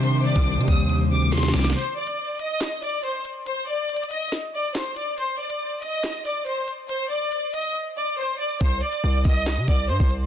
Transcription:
<<
  \new Staff \with { instrumentName = "Violin section" } { \time 4/4 \key c \minor \tempo 4 = 140 c'''8 d'''4 ees'''8 r8 d'''8 c'''8 d'''8 | c''8 d''4 ees''4 d''8 c''8 r8 | c''8 d''4 ees''8 r8 d''8 c''8 d''8 | c''8 d''4 ees''4 d''8 c''8 r8 |
c''8 d''4 ees''8 r8 d''8 c''8 d''8 | c''8 d''4 ees''4 d''8 c''8 r8 | }
  \new Staff \with { instrumentName = "Violin section" } { \time 4/4 \key c \minor r8 d''8 r2. | r1 | r1 | r1 |
r1 | r1 | }
  \new Staff \with { instrumentName = "String section" } { \time 4/4 \key c \minor <ees d' g' c''>1 | r1 | r1 | r1 |
r1 | r1 | }
  \new Staff \with { instrumentName = "Tine electric piano" } { \time 4/4 \key c \minor <c c' d'>8 ees4 g4 c'8 c8 d'8 | r1 | r1 | r1 |
r1 | r1 | }
  \new Staff \with { instrumentName = "808-style bass" } { \clef bass \time 4/4 \key c \minor c8. c,8 c16 ees,4 d,8 ees,8 c,8 | r1 | r1 | r1 |
r1 | c,8 r8 c,8 c,8. c16 c,8 g,16 c,8. | }
  \new DrumStaff \with { instrumentName = "Drums" } \drummode { \time 4/4 hh8. bd16 \tuplet 3/2 { hh16 hh16 hh16 <hh bd>16 r16 r16 } hh4 <hh sn>32 sn32 sn32 sn32 <hho sn>32 sn32 sn32 sn32 | hh8. hh16 r8 hh8 <hc hh sn>8 hh8 hh8 hh8 | hh4 \tuplet 3/2 { hh16 hh16 hh16 hh16 r16 r16 } <hh sn>4 <hc hh sn>8 hh8 | hh8. hh16 r8 hh8 <hc hh sn>8 hh8 hh8 hh8 |
hh4 hh8 hh8 r4 r4 | <hh bd>8. hh16 r8 <hh bd>8 <hc hh sn>8 <hh bd>8 hh16 bd16 hh8 | }
>>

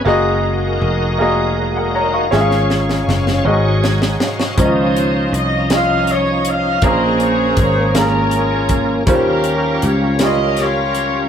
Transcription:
<<
  \new Staff \with { instrumentName = "Horn section" } { \time 6/8 \key des \major \tempo 4. = 53 << { r2. | r2. | c''4 ees''8 f''8 des''8 f''8 | ees''8 des''8 des''8 bes'4 r8 |
bes'4 des''8 ees''8 des''4 | } \\ { r2. | r2. | <ees' f'>4. r4. | <aes' c''>4. <des' f'>4. |
<des' g'>4. r8 <f' g'>4 | } >> }
  \new Staff \with { instrumentName = "Grand piano" } { \time 6/8 \key des \major << { r2 r16 <bes' ges''>16 <des'' bes''>16 <f'' des'''>16~ | <f'' des'''>16 r2 r8. | r2. | r2. |
r2. | } \\ { <bes ges' aes' ees''>4 r8 <bes ges' aes' ees''>4 r8 | <des' f' aes' fes'' f''>4 r8 <des' ges' aes' ees''>4 r8 | <des' ees' f' c'' ees''>4 r8 <des' f' ees'' c'''>4 r8 | <bes des' aes' c'''>4 r8 <bes des' aes' bes'>4 r8 |
<g des' f' c''>4 r8 <g des' f' c'''>4 r8 | } >> }
  \new Staff \with { instrumentName = "Grand piano" } { \clef bass \time 6/8 \key des \major r2. | aes,4. aes,4. | ees4. r4. | bes,4. r4. |
ees4. r4. | }
  \new Staff \with { instrumentName = "Tonewheel organ" } { \time 6/8 \key des \major << { r2. | r2 aes''8 f''8 | r2. | r2. |
r2. | } \\ { <aes ees' ges' a' bes'>2. | <aes des' f' des''>4. <aes ees' ges' c'' des''>4. | <f des' ees' ees''>2. | <bes des' aes' bes' ces''>2. |
<g des' f' bes'>2. | } >> }
  \new Staff \with { instrumentName = "Slap bass" } { \clef bass \time 6/8 \key des \major ges,,4 f,,2 | aes,,4 ges,,8 aes,,4 r8 | des,4 c,2 | bes,,4 aes,,2 |
ees,4 des,2 | }
  \new DrumStaff \with { instrumentName = "Drums" } \drummode { \time 6/8 r4. r4. | sn16 sn16 sn16 sn16 sn16 sn16 r8 sn16 sn16 sn16 sn16 | <hh bd>8 hh8 hh8 <hh sn>8 hh8 hh8 | <hh bd>8 hh8 <hh bd>8 <hh sn>8 hh8 <hh bd>8 |
<hh bd>8 hh8 hh8 <hh sn>8 <hh sn>8 hh8 | }
>>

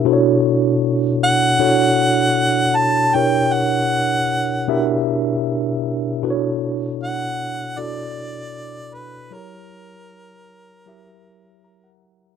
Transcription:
<<
  \new Staff \with { instrumentName = "Harmonica" } { \time 4/4 \key b \minor \tempo 4 = 78 r4. fis''2 a''8 | g''8 fis''2 r4. | r4 fis''4 d''4. b'8 | ais'2.~ ais'8 r8 | }
  \new Staff \with { instrumentName = "Tine electric piano" } { \time 4/4 \key b \minor << { r1 | r1 | r1 | r2. ais''16 fis''8. | } \\ { <b, d' e' fis' a' c'' cis''>4. r8 <b, d' e' fis' a' cis''>4. r8 | <b, d' e' g' ais' cis''>4. r8 <b, d' e' g' ais' e''>4. r8 | <b, d' e' fis' a' b' cis''>4. r8 <b, d' e' fis' a' d''>4. r8 | <fis e' g' a' ais' cis''>4. r8 <fis e' g' ais' e''>4. r8 | } >> }
>>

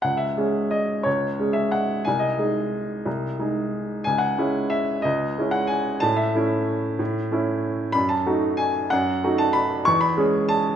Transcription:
<<
  \new Staff \with { instrumentName = "Grand piano" } { \time 3/4 \key cis \minor \tempo 4 = 184 fis''8 e''4. dis''4 | cis''4. e''8 fis''4 | gis''8 dis''2~ dis''8~ | dis''2~ dis''8 r8 |
gis''8 fis''4. e''4 | dis''4. fis''8 gis''4 | a''8 e''2~ e''8~ | e''2~ e''8 r8 |
b''8 a''4. gis''4 | fis''4. a''8 b''4 | cis'''8 b''4. a''4 | }
  \new Staff \with { instrumentName = "Grand piano" } { \time 3/4 \key cis \minor cis,4 <gis cis' gis'>2 | cis,4 <gis cis' gis'>2 | bis,,4 <gis dis' gis'>2 | bis,,4 <gis dis' gis'>2 |
cis,4 <gis cis' e'>2 | cis,4 <gis cis' e'>2 | a,4 <a cis' e'>2 | a,4 <a cis' e'>2 |
fis,4 <a dis' fis'>2 | fis,4 <a dis' fis'>2 | e,4 <gis cis' gis'>2 | }
>>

